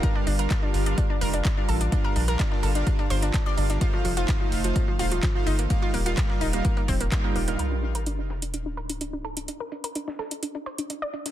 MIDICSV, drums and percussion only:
0, 0, Header, 1, 2, 480
1, 0, Start_track
1, 0, Key_signature, -2, "minor"
1, 0, Tempo, 472441
1, 34, Time_signature, 4, 2, 24, 8
1, 11496, End_track
2, 0, Start_track
2, 0, Title_t, "Drums"
2, 32, Note_on_c, 9, 42, 90
2, 33, Note_off_c, 9, 42, 0
2, 33, Note_on_c, 9, 36, 119
2, 33, Note_on_c, 9, 42, 53
2, 135, Note_off_c, 9, 36, 0
2, 135, Note_off_c, 9, 42, 0
2, 273, Note_on_c, 9, 42, 72
2, 273, Note_on_c, 9, 46, 107
2, 374, Note_off_c, 9, 42, 0
2, 374, Note_off_c, 9, 46, 0
2, 397, Note_on_c, 9, 42, 64
2, 499, Note_off_c, 9, 42, 0
2, 512, Note_on_c, 9, 38, 119
2, 512, Note_on_c, 9, 42, 92
2, 513, Note_off_c, 9, 42, 0
2, 513, Note_on_c, 9, 36, 121
2, 513, Note_on_c, 9, 39, 115
2, 513, Note_on_c, 9, 42, 51
2, 614, Note_off_c, 9, 38, 0
2, 615, Note_off_c, 9, 36, 0
2, 615, Note_off_c, 9, 39, 0
2, 615, Note_off_c, 9, 42, 0
2, 753, Note_on_c, 9, 38, 53
2, 753, Note_on_c, 9, 42, 69
2, 753, Note_on_c, 9, 46, 95
2, 854, Note_off_c, 9, 38, 0
2, 854, Note_off_c, 9, 42, 0
2, 855, Note_off_c, 9, 46, 0
2, 877, Note_on_c, 9, 42, 65
2, 979, Note_off_c, 9, 42, 0
2, 993, Note_on_c, 9, 36, 119
2, 993, Note_on_c, 9, 42, 53
2, 1095, Note_off_c, 9, 36, 0
2, 1095, Note_off_c, 9, 42, 0
2, 1233, Note_on_c, 9, 42, 74
2, 1233, Note_on_c, 9, 46, 111
2, 1334, Note_off_c, 9, 42, 0
2, 1334, Note_off_c, 9, 46, 0
2, 1357, Note_on_c, 9, 42, 63
2, 1458, Note_off_c, 9, 42, 0
2, 1473, Note_on_c, 9, 36, 123
2, 1473, Note_on_c, 9, 38, 118
2, 1473, Note_on_c, 9, 39, 117
2, 1473, Note_on_c, 9, 42, 51
2, 1574, Note_off_c, 9, 38, 0
2, 1575, Note_off_c, 9, 36, 0
2, 1575, Note_off_c, 9, 39, 0
2, 1575, Note_off_c, 9, 42, 0
2, 1713, Note_on_c, 9, 42, 68
2, 1713, Note_on_c, 9, 46, 96
2, 1814, Note_off_c, 9, 46, 0
2, 1815, Note_off_c, 9, 42, 0
2, 1837, Note_on_c, 9, 42, 65
2, 1939, Note_off_c, 9, 42, 0
2, 1953, Note_on_c, 9, 36, 119
2, 1953, Note_on_c, 9, 42, 92
2, 2055, Note_off_c, 9, 36, 0
2, 2055, Note_off_c, 9, 42, 0
2, 2193, Note_on_c, 9, 42, 68
2, 2193, Note_on_c, 9, 46, 105
2, 2294, Note_off_c, 9, 42, 0
2, 2295, Note_off_c, 9, 46, 0
2, 2317, Note_on_c, 9, 42, 66
2, 2418, Note_off_c, 9, 42, 0
2, 2433, Note_on_c, 9, 36, 116
2, 2433, Note_on_c, 9, 38, 119
2, 2433, Note_on_c, 9, 39, 112
2, 2433, Note_on_c, 9, 42, 53
2, 2534, Note_off_c, 9, 38, 0
2, 2535, Note_off_c, 9, 36, 0
2, 2535, Note_off_c, 9, 39, 0
2, 2535, Note_off_c, 9, 42, 0
2, 2557, Note_on_c, 9, 38, 50
2, 2658, Note_off_c, 9, 38, 0
2, 2673, Note_on_c, 9, 42, 69
2, 2673, Note_on_c, 9, 46, 91
2, 2774, Note_off_c, 9, 42, 0
2, 2774, Note_off_c, 9, 46, 0
2, 2797, Note_on_c, 9, 42, 67
2, 2898, Note_off_c, 9, 42, 0
2, 2913, Note_on_c, 9, 36, 120
2, 2913, Note_on_c, 9, 42, 91
2, 3014, Note_off_c, 9, 36, 0
2, 3015, Note_off_c, 9, 42, 0
2, 3037, Note_on_c, 9, 42, 45
2, 3139, Note_off_c, 9, 42, 0
2, 3153, Note_on_c, 9, 42, 71
2, 3153, Note_on_c, 9, 46, 108
2, 3254, Note_off_c, 9, 42, 0
2, 3254, Note_off_c, 9, 46, 0
2, 3276, Note_on_c, 9, 42, 47
2, 3277, Note_off_c, 9, 42, 0
2, 3277, Note_on_c, 9, 42, 67
2, 3378, Note_off_c, 9, 42, 0
2, 3393, Note_on_c, 9, 36, 120
2, 3393, Note_on_c, 9, 38, 118
2, 3393, Note_on_c, 9, 39, 116
2, 3393, Note_on_c, 9, 42, 54
2, 3494, Note_off_c, 9, 36, 0
2, 3494, Note_off_c, 9, 38, 0
2, 3494, Note_off_c, 9, 42, 0
2, 3495, Note_off_c, 9, 39, 0
2, 3632, Note_on_c, 9, 42, 70
2, 3633, Note_on_c, 9, 46, 91
2, 3734, Note_off_c, 9, 42, 0
2, 3734, Note_off_c, 9, 46, 0
2, 3756, Note_on_c, 9, 42, 66
2, 3757, Note_on_c, 9, 38, 54
2, 3858, Note_off_c, 9, 38, 0
2, 3858, Note_off_c, 9, 42, 0
2, 3872, Note_on_c, 9, 42, 58
2, 3873, Note_off_c, 9, 42, 0
2, 3873, Note_on_c, 9, 36, 115
2, 3873, Note_on_c, 9, 42, 91
2, 3974, Note_off_c, 9, 36, 0
2, 3974, Note_off_c, 9, 42, 0
2, 4113, Note_on_c, 9, 42, 68
2, 4113, Note_on_c, 9, 46, 107
2, 4214, Note_off_c, 9, 46, 0
2, 4215, Note_off_c, 9, 42, 0
2, 4237, Note_on_c, 9, 42, 69
2, 4338, Note_off_c, 9, 42, 0
2, 4353, Note_on_c, 9, 36, 113
2, 4353, Note_on_c, 9, 38, 120
2, 4353, Note_on_c, 9, 39, 114
2, 4353, Note_on_c, 9, 42, 56
2, 4454, Note_off_c, 9, 38, 0
2, 4455, Note_off_c, 9, 36, 0
2, 4455, Note_off_c, 9, 39, 0
2, 4455, Note_off_c, 9, 42, 0
2, 4593, Note_on_c, 9, 38, 54
2, 4593, Note_on_c, 9, 42, 69
2, 4593, Note_on_c, 9, 46, 88
2, 4694, Note_off_c, 9, 38, 0
2, 4694, Note_off_c, 9, 42, 0
2, 4695, Note_off_c, 9, 46, 0
2, 4717, Note_on_c, 9, 42, 67
2, 4818, Note_off_c, 9, 42, 0
2, 4833, Note_on_c, 9, 36, 114
2, 4833, Note_on_c, 9, 42, 92
2, 4935, Note_off_c, 9, 36, 0
2, 4935, Note_off_c, 9, 42, 0
2, 5073, Note_on_c, 9, 42, 71
2, 5073, Note_on_c, 9, 46, 105
2, 5175, Note_off_c, 9, 42, 0
2, 5175, Note_off_c, 9, 46, 0
2, 5197, Note_on_c, 9, 42, 69
2, 5299, Note_off_c, 9, 42, 0
2, 5313, Note_on_c, 9, 36, 115
2, 5313, Note_on_c, 9, 38, 120
2, 5313, Note_on_c, 9, 39, 118
2, 5313, Note_on_c, 9, 42, 56
2, 5414, Note_off_c, 9, 38, 0
2, 5415, Note_off_c, 9, 36, 0
2, 5415, Note_off_c, 9, 39, 0
2, 5415, Note_off_c, 9, 42, 0
2, 5553, Note_on_c, 9, 42, 70
2, 5553, Note_on_c, 9, 46, 87
2, 5654, Note_off_c, 9, 42, 0
2, 5655, Note_off_c, 9, 46, 0
2, 5677, Note_on_c, 9, 42, 72
2, 5779, Note_off_c, 9, 42, 0
2, 5793, Note_on_c, 9, 42, 56
2, 5794, Note_on_c, 9, 36, 118
2, 5895, Note_off_c, 9, 36, 0
2, 5895, Note_off_c, 9, 42, 0
2, 6033, Note_on_c, 9, 42, 70
2, 6033, Note_on_c, 9, 46, 105
2, 6135, Note_off_c, 9, 42, 0
2, 6135, Note_off_c, 9, 46, 0
2, 6157, Note_on_c, 9, 42, 71
2, 6259, Note_off_c, 9, 42, 0
2, 6273, Note_on_c, 9, 38, 122
2, 6273, Note_on_c, 9, 39, 118
2, 6273, Note_on_c, 9, 42, 93
2, 6274, Note_on_c, 9, 36, 113
2, 6375, Note_off_c, 9, 36, 0
2, 6375, Note_off_c, 9, 38, 0
2, 6375, Note_off_c, 9, 39, 0
2, 6375, Note_off_c, 9, 42, 0
2, 6398, Note_on_c, 9, 38, 50
2, 6499, Note_off_c, 9, 38, 0
2, 6513, Note_on_c, 9, 42, 70
2, 6513, Note_on_c, 9, 46, 91
2, 6615, Note_off_c, 9, 42, 0
2, 6615, Note_off_c, 9, 46, 0
2, 6637, Note_on_c, 9, 42, 71
2, 6739, Note_off_c, 9, 42, 0
2, 6753, Note_on_c, 9, 42, 92
2, 6754, Note_on_c, 9, 36, 117
2, 6855, Note_off_c, 9, 36, 0
2, 6855, Note_off_c, 9, 42, 0
2, 6877, Note_on_c, 9, 42, 46
2, 6979, Note_off_c, 9, 42, 0
2, 6993, Note_on_c, 9, 42, 74
2, 6993, Note_on_c, 9, 46, 107
2, 6994, Note_on_c, 9, 36, 60
2, 7095, Note_off_c, 9, 36, 0
2, 7095, Note_off_c, 9, 42, 0
2, 7095, Note_off_c, 9, 46, 0
2, 7117, Note_on_c, 9, 42, 69
2, 7118, Note_off_c, 9, 42, 0
2, 7118, Note_on_c, 9, 42, 45
2, 7219, Note_off_c, 9, 42, 0
2, 7233, Note_on_c, 9, 42, 56
2, 7234, Note_off_c, 9, 42, 0
2, 7234, Note_on_c, 9, 36, 114
2, 7234, Note_on_c, 9, 38, 121
2, 7234, Note_on_c, 9, 39, 124
2, 7234, Note_on_c, 9, 42, 90
2, 7335, Note_off_c, 9, 36, 0
2, 7335, Note_off_c, 9, 39, 0
2, 7336, Note_off_c, 9, 38, 0
2, 7336, Note_off_c, 9, 42, 0
2, 7473, Note_on_c, 9, 46, 88
2, 7575, Note_off_c, 9, 46, 0
2, 7597, Note_on_c, 9, 42, 70
2, 7699, Note_off_c, 9, 42, 0
2, 7713, Note_on_c, 9, 42, 53
2, 7815, Note_off_c, 9, 42, 0
2, 7954, Note_on_c, 9, 42, 65
2, 8055, Note_off_c, 9, 42, 0
2, 8077, Note_on_c, 9, 42, 65
2, 8179, Note_off_c, 9, 42, 0
2, 8193, Note_on_c, 9, 42, 52
2, 8194, Note_off_c, 9, 42, 0
2, 8194, Note_on_c, 9, 42, 85
2, 8296, Note_off_c, 9, 42, 0
2, 8434, Note_on_c, 9, 38, 49
2, 8434, Note_on_c, 9, 42, 66
2, 8536, Note_off_c, 9, 38, 0
2, 8536, Note_off_c, 9, 42, 0
2, 8557, Note_on_c, 9, 42, 65
2, 8659, Note_off_c, 9, 42, 0
2, 8673, Note_on_c, 9, 42, 87
2, 8775, Note_off_c, 9, 42, 0
2, 8914, Note_on_c, 9, 42, 66
2, 9016, Note_off_c, 9, 42, 0
2, 9037, Note_on_c, 9, 42, 65
2, 9139, Note_off_c, 9, 42, 0
2, 9153, Note_on_c, 9, 42, 52
2, 9154, Note_off_c, 9, 42, 0
2, 9154, Note_on_c, 9, 42, 83
2, 9256, Note_off_c, 9, 42, 0
2, 9394, Note_on_c, 9, 42, 65
2, 9496, Note_off_c, 9, 42, 0
2, 9517, Note_on_c, 9, 42, 68
2, 9518, Note_off_c, 9, 42, 0
2, 9518, Note_on_c, 9, 42, 42
2, 9619, Note_off_c, 9, 42, 0
2, 9633, Note_on_c, 9, 42, 51
2, 9634, Note_off_c, 9, 42, 0
2, 9634, Note_on_c, 9, 42, 84
2, 9735, Note_off_c, 9, 42, 0
2, 9874, Note_on_c, 9, 42, 65
2, 9975, Note_off_c, 9, 42, 0
2, 9997, Note_on_c, 9, 42, 63
2, 10099, Note_off_c, 9, 42, 0
2, 10113, Note_on_c, 9, 42, 50
2, 10114, Note_off_c, 9, 42, 0
2, 10114, Note_on_c, 9, 42, 84
2, 10215, Note_off_c, 9, 42, 0
2, 10238, Note_on_c, 9, 38, 45
2, 10339, Note_off_c, 9, 38, 0
2, 10353, Note_on_c, 9, 38, 39
2, 10353, Note_on_c, 9, 42, 63
2, 10455, Note_off_c, 9, 38, 0
2, 10455, Note_off_c, 9, 42, 0
2, 10477, Note_on_c, 9, 42, 62
2, 10579, Note_off_c, 9, 42, 0
2, 10593, Note_on_c, 9, 42, 51
2, 10594, Note_off_c, 9, 42, 0
2, 10594, Note_on_c, 9, 42, 87
2, 10695, Note_off_c, 9, 42, 0
2, 10717, Note_on_c, 9, 42, 41
2, 10819, Note_off_c, 9, 42, 0
2, 10833, Note_on_c, 9, 42, 66
2, 10935, Note_off_c, 9, 42, 0
2, 10957, Note_on_c, 9, 42, 43
2, 11059, Note_off_c, 9, 42, 0
2, 11073, Note_on_c, 9, 42, 52
2, 11074, Note_off_c, 9, 42, 0
2, 11074, Note_on_c, 9, 42, 83
2, 11175, Note_off_c, 9, 42, 0
2, 11314, Note_on_c, 9, 42, 65
2, 11415, Note_off_c, 9, 42, 0
2, 11437, Note_on_c, 9, 38, 52
2, 11437, Note_on_c, 9, 42, 64
2, 11496, Note_off_c, 9, 38, 0
2, 11496, Note_off_c, 9, 42, 0
2, 11496, End_track
0, 0, End_of_file